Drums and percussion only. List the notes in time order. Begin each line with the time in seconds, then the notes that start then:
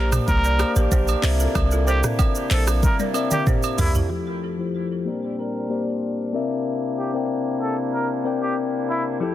0.12 cross-stick, mid tom, high agogo, shaker
0.28 kick, shaker
0.44 shaker
0.59 cross-stick, high agogo, shaker
0.76 shaker
0.92 kick, low woodblock, shaker
1.08 high agogo, shaker
1.23 clap, open hi-hat, shaker
1.40 shaker
1.55 kick, cross-stick, high agogo, shaker
1.71 shaker
1.87 shaker
2.04 cross-stick, mid tom, shaker
2.19 kick, high agogo, low woodblock, shaker
2.35 shaker
2.51 clap, open hi-hat, shaker
2.67 cross-stick, high agogo, shaker
2.83 kick, high tom, shaker
2.99 high tom, shaker
3.14 high agogo, shaker
3.31 mid tom, shaker
3.47 kick, mid tom, low woodblock, shaker
3.63 high agogo, shaker
3.78 floor tom, open hi-hat, shaker
3.95 floor tom, shaker